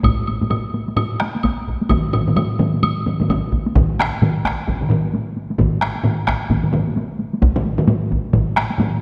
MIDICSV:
0, 0, Header, 1, 3, 480
1, 0, Start_track
1, 0, Tempo, 460829
1, 52, Time_signature, 4, 2, 24, 8
1, 9391, End_track
2, 0, Start_track
2, 0, Title_t, "Taiko and cinematic ensemble drums"
2, 37, Note_on_c, 9, 45, 103
2, 43, Note_on_c, 9, 48, 86
2, 46, Note_on_c, 9, 41, 97
2, 141, Note_off_c, 9, 45, 0
2, 147, Note_off_c, 9, 48, 0
2, 150, Note_off_c, 9, 41, 0
2, 291, Note_on_c, 9, 48, 56
2, 395, Note_off_c, 9, 48, 0
2, 431, Note_on_c, 9, 45, 65
2, 431, Note_on_c, 9, 48, 56
2, 523, Note_off_c, 9, 45, 0
2, 523, Note_on_c, 9, 45, 91
2, 529, Note_off_c, 9, 48, 0
2, 529, Note_on_c, 9, 48, 77
2, 627, Note_off_c, 9, 45, 0
2, 633, Note_off_c, 9, 48, 0
2, 769, Note_on_c, 9, 48, 67
2, 873, Note_off_c, 9, 48, 0
2, 919, Note_on_c, 9, 48, 61
2, 1009, Note_off_c, 9, 48, 0
2, 1009, Note_on_c, 9, 45, 119
2, 1009, Note_on_c, 9, 48, 70
2, 1113, Note_off_c, 9, 48, 0
2, 1114, Note_off_c, 9, 45, 0
2, 1248, Note_on_c, 9, 37, 75
2, 1262, Note_on_c, 9, 48, 62
2, 1352, Note_off_c, 9, 37, 0
2, 1366, Note_off_c, 9, 48, 0
2, 1405, Note_on_c, 9, 48, 56
2, 1496, Note_on_c, 9, 41, 64
2, 1499, Note_off_c, 9, 48, 0
2, 1499, Note_on_c, 9, 48, 78
2, 1600, Note_off_c, 9, 41, 0
2, 1603, Note_off_c, 9, 48, 0
2, 1746, Note_on_c, 9, 41, 69
2, 1850, Note_off_c, 9, 41, 0
2, 1890, Note_on_c, 9, 48, 59
2, 1973, Note_on_c, 9, 45, 111
2, 1983, Note_on_c, 9, 47, 95
2, 1987, Note_on_c, 9, 41, 100
2, 1988, Note_off_c, 9, 48, 0
2, 1988, Note_on_c, 9, 48, 80
2, 2077, Note_off_c, 9, 45, 0
2, 2087, Note_off_c, 9, 47, 0
2, 2091, Note_off_c, 9, 41, 0
2, 2092, Note_off_c, 9, 48, 0
2, 2219, Note_on_c, 9, 45, 93
2, 2226, Note_on_c, 9, 47, 107
2, 2233, Note_on_c, 9, 48, 55
2, 2323, Note_off_c, 9, 45, 0
2, 2330, Note_off_c, 9, 47, 0
2, 2337, Note_off_c, 9, 48, 0
2, 2370, Note_on_c, 9, 45, 73
2, 2379, Note_on_c, 9, 48, 59
2, 2381, Note_on_c, 9, 47, 75
2, 2461, Note_off_c, 9, 45, 0
2, 2461, Note_on_c, 9, 45, 101
2, 2467, Note_off_c, 9, 47, 0
2, 2467, Note_on_c, 9, 47, 96
2, 2472, Note_off_c, 9, 48, 0
2, 2472, Note_on_c, 9, 48, 75
2, 2565, Note_off_c, 9, 45, 0
2, 2571, Note_off_c, 9, 47, 0
2, 2577, Note_off_c, 9, 48, 0
2, 2700, Note_on_c, 9, 45, 96
2, 2703, Note_on_c, 9, 47, 104
2, 2713, Note_on_c, 9, 48, 59
2, 2804, Note_off_c, 9, 45, 0
2, 2807, Note_off_c, 9, 47, 0
2, 2817, Note_off_c, 9, 48, 0
2, 2854, Note_on_c, 9, 48, 59
2, 2944, Note_on_c, 9, 45, 76
2, 2945, Note_off_c, 9, 48, 0
2, 2945, Note_on_c, 9, 48, 71
2, 2948, Note_on_c, 9, 47, 77
2, 3048, Note_off_c, 9, 45, 0
2, 3049, Note_off_c, 9, 48, 0
2, 3053, Note_off_c, 9, 47, 0
2, 3190, Note_on_c, 9, 45, 72
2, 3190, Note_on_c, 9, 48, 57
2, 3196, Note_on_c, 9, 47, 76
2, 3294, Note_off_c, 9, 48, 0
2, 3295, Note_off_c, 9, 45, 0
2, 3300, Note_off_c, 9, 47, 0
2, 3331, Note_on_c, 9, 45, 74
2, 3339, Note_on_c, 9, 48, 58
2, 3349, Note_on_c, 9, 47, 75
2, 3428, Note_on_c, 9, 41, 71
2, 3436, Note_off_c, 9, 45, 0
2, 3437, Note_on_c, 9, 45, 98
2, 3438, Note_off_c, 9, 48, 0
2, 3438, Note_on_c, 9, 48, 73
2, 3445, Note_off_c, 9, 47, 0
2, 3445, Note_on_c, 9, 47, 101
2, 3532, Note_off_c, 9, 41, 0
2, 3541, Note_off_c, 9, 45, 0
2, 3542, Note_off_c, 9, 48, 0
2, 3549, Note_off_c, 9, 47, 0
2, 3667, Note_on_c, 9, 41, 74
2, 3681, Note_on_c, 9, 48, 51
2, 3771, Note_off_c, 9, 41, 0
2, 3785, Note_off_c, 9, 48, 0
2, 3819, Note_on_c, 9, 48, 65
2, 3911, Note_on_c, 9, 41, 106
2, 3914, Note_on_c, 9, 45, 107
2, 3917, Note_off_c, 9, 48, 0
2, 3917, Note_on_c, 9, 48, 73
2, 3925, Note_on_c, 9, 47, 88
2, 4015, Note_off_c, 9, 41, 0
2, 4019, Note_off_c, 9, 45, 0
2, 4021, Note_off_c, 9, 48, 0
2, 4029, Note_off_c, 9, 47, 0
2, 4153, Note_on_c, 9, 48, 48
2, 4161, Note_on_c, 9, 37, 62
2, 4172, Note_off_c, 9, 37, 0
2, 4172, Note_on_c, 9, 37, 80
2, 4258, Note_off_c, 9, 48, 0
2, 4276, Note_off_c, 9, 37, 0
2, 4394, Note_on_c, 9, 45, 89
2, 4395, Note_on_c, 9, 48, 63
2, 4405, Note_on_c, 9, 47, 88
2, 4499, Note_off_c, 9, 45, 0
2, 4500, Note_off_c, 9, 48, 0
2, 4509, Note_off_c, 9, 47, 0
2, 4634, Note_on_c, 9, 41, 68
2, 4636, Note_on_c, 9, 48, 58
2, 4638, Note_on_c, 9, 37, 67
2, 4648, Note_off_c, 9, 37, 0
2, 4648, Note_on_c, 9, 37, 71
2, 4739, Note_off_c, 9, 41, 0
2, 4740, Note_off_c, 9, 48, 0
2, 4752, Note_off_c, 9, 37, 0
2, 4868, Note_on_c, 9, 48, 56
2, 4870, Note_on_c, 9, 45, 79
2, 4879, Note_on_c, 9, 41, 77
2, 4883, Note_on_c, 9, 47, 69
2, 4972, Note_off_c, 9, 48, 0
2, 4974, Note_off_c, 9, 45, 0
2, 4983, Note_off_c, 9, 41, 0
2, 4987, Note_off_c, 9, 47, 0
2, 5010, Note_on_c, 9, 45, 66
2, 5022, Note_on_c, 9, 47, 67
2, 5101, Note_off_c, 9, 45, 0
2, 5101, Note_on_c, 9, 45, 99
2, 5114, Note_on_c, 9, 48, 54
2, 5116, Note_off_c, 9, 47, 0
2, 5116, Note_on_c, 9, 47, 102
2, 5206, Note_off_c, 9, 45, 0
2, 5218, Note_off_c, 9, 48, 0
2, 5220, Note_off_c, 9, 47, 0
2, 5257, Note_on_c, 9, 48, 50
2, 5349, Note_off_c, 9, 48, 0
2, 5349, Note_on_c, 9, 48, 65
2, 5453, Note_off_c, 9, 48, 0
2, 5591, Note_on_c, 9, 48, 48
2, 5695, Note_off_c, 9, 48, 0
2, 5731, Note_on_c, 9, 48, 58
2, 5818, Note_on_c, 9, 45, 99
2, 5819, Note_on_c, 9, 41, 83
2, 5826, Note_on_c, 9, 47, 89
2, 5827, Note_off_c, 9, 48, 0
2, 5827, Note_on_c, 9, 48, 74
2, 5922, Note_off_c, 9, 45, 0
2, 5923, Note_off_c, 9, 41, 0
2, 5930, Note_off_c, 9, 47, 0
2, 5931, Note_off_c, 9, 48, 0
2, 6056, Note_on_c, 9, 37, 69
2, 6064, Note_off_c, 9, 37, 0
2, 6064, Note_on_c, 9, 37, 75
2, 6068, Note_on_c, 9, 48, 50
2, 6169, Note_off_c, 9, 37, 0
2, 6172, Note_off_c, 9, 48, 0
2, 6211, Note_on_c, 9, 48, 49
2, 6287, Note_on_c, 9, 45, 99
2, 6302, Note_off_c, 9, 48, 0
2, 6302, Note_on_c, 9, 47, 91
2, 6302, Note_on_c, 9, 48, 69
2, 6391, Note_off_c, 9, 45, 0
2, 6406, Note_off_c, 9, 47, 0
2, 6406, Note_off_c, 9, 48, 0
2, 6532, Note_on_c, 9, 37, 70
2, 6535, Note_on_c, 9, 41, 68
2, 6537, Note_off_c, 9, 37, 0
2, 6537, Note_on_c, 9, 37, 73
2, 6537, Note_on_c, 9, 48, 55
2, 6639, Note_off_c, 9, 41, 0
2, 6641, Note_off_c, 9, 37, 0
2, 6641, Note_off_c, 9, 48, 0
2, 6767, Note_on_c, 9, 41, 78
2, 6769, Note_on_c, 9, 45, 81
2, 6776, Note_on_c, 9, 48, 69
2, 6780, Note_on_c, 9, 47, 62
2, 6871, Note_off_c, 9, 41, 0
2, 6874, Note_off_c, 9, 45, 0
2, 6880, Note_off_c, 9, 48, 0
2, 6884, Note_off_c, 9, 47, 0
2, 6907, Note_on_c, 9, 45, 59
2, 6912, Note_on_c, 9, 47, 71
2, 7008, Note_off_c, 9, 45, 0
2, 7008, Note_on_c, 9, 45, 101
2, 7016, Note_off_c, 9, 47, 0
2, 7016, Note_on_c, 9, 48, 58
2, 7017, Note_on_c, 9, 47, 100
2, 7112, Note_off_c, 9, 45, 0
2, 7120, Note_off_c, 9, 48, 0
2, 7121, Note_off_c, 9, 47, 0
2, 7161, Note_on_c, 9, 48, 52
2, 7251, Note_off_c, 9, 48, 0
2, 7251, Note_on_c, 9, 48, 71
2, 7355, Note_off_c, 9, 48, 0
2, 7488, Note_on_c, 9, 48, 56
2, 7592, Note_off_c, 9, 48, 0
2, 7639, Note_on_c, 9, 48, 60
2, 7729, Note_off_c, 9, 48, 0
2, 7729, Note_on_c, 9, 48, 67
2, 7730, Note_on_c, 9, 41, 101
2, 7833, Note_off_c, 9, 48, 0
2, 7834, Note_off_c, 9, 41, 0
2, 7873, Note_on_c, 9, 47, 105
2, 7876, Note_on_c, 9, 45, 92
2, 7968, Note_on_c, 9, 48, 57
2, 7978, Note_off_c, 9, 47, 0
2, 7981, Note_off_c, 9, 45, 0
2, 8072, Note_off_c, 9, 48, 0
2, 8105, Note_on_c, 9, 45, 99
2, 8111, Note_on_c, 9, 48, 54
2, 8112, Note_on_c, 9, 47, 99
2, 8203, Note_off_c, 9, 45, 0
2, 8203, Note_on_c, 9, 45, 97
2, 8204, Note_off_c, 9, 48, 0
2, 8204, Note_on_c, 9, 48, 74
2, 8208, Note_off_c, 9, 47, 0
2, 8208, Note_on_c, 9, 47, 89
2, 8307, Note_off_c, 9, 45, 0
2, 8308, Note_off_c, 9, 48, 0
2, 8312, Note_off_c, 9, 47, 0
2, 8446, Note_on_c, 9, 48, 59
2, 8455, Note_on_c, 9, 41, 72
2, 8550, Note_off_c, 9, 48, 0
2, 8559, Note_off_c, 9, 41, 0
2, 8681, Note_on_c, 9, 45, 107
2, 8682, Note_on_c, 9, 47, 89
2, 8683, Note_on_c, 9, 48, 55
2, 8696, Note_on_c, 9, 41, 70
2, 8785, Note_off_c, 9, 45, 0
2, 8786, Note_off_c, 9, 47, 0
2, 8787, Note_off_c, 9, 48, 0
2, 8800, Note_off_c, 9, 41, 0
2, 8920, Note_on_c, 9, 37, 66
2, 8923, Note_on_c, 9, 48, 50
2, 8926, Note_off_c, 9, 37, 0
2, 8926, Note_on_c, 9, 37, 79
2, 9027, Note_off_c, 9, 48, 0
2, 9030, Note_off_c, 9, 37, 0
2, 9069, Note_on_c, 9, 48, 46
2, 9160, Note_on_c, 9, 45, 90
2, 9164, Note_off_c, 9, 48, 0
2, 9164, Note_on_c, 9, 47, 100
2, 9164, Note_on_c, 9, 48, 63
2, 9264, Note_off_c, 9, 45, 0
2, 9268, Note_off_c, 9, 47, 0
2, 9268, Note_off_c, 9, 48, 0
2, 9391, End_track
3, 0, Start_track
3, 0, Title_t, "Drums"
3, 45, Note_on_c, 9, 76, 52
3, 149, Note_off_c, 9, 76, 0
3, 285, Note_on_c, 9, 76, 40
3, 389, Note_off_c, 9, 76, 0
3, 527, Note_on_c, 9, 76, 48
3, 632, Note_off_c, 9, 76, 0
3, 1008, Note_on_c, 9, 76, 56
3, 1112, Note_off_c, 9, 76, 0
3, 1492, Note_on_c, 9, 76, 48
3, 1597, Note_off_c, 9, 76, 0
3, 1973, Note_on_c, 9, 76, 52
3, 2078, Note_off_c, 9, 76, 0
3, 2223, Note_on_c, 9, 76, 46
3, 2327, Note_off_c, 9, 76, 0
3, 2465, Note_on_c, 9, 76, 50
3, 2569, Note_off_c, 9, 76, 0
3, 2948, Note_on_c, 9, 76, 62
3, 3052, Note_off_c, 9, 76, 0
3, 3437, Note_on_c, 9, 76, 44
3, 3541, Note_off_c, 9, 76, 0
3, 9391, End_track
0, 0, End_of_file